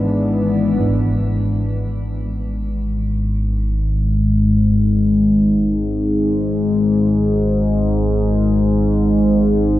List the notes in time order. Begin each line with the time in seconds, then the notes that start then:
Already playing: G#1 G#2 E3 B3 D4
0.80 G#1 G#2, impact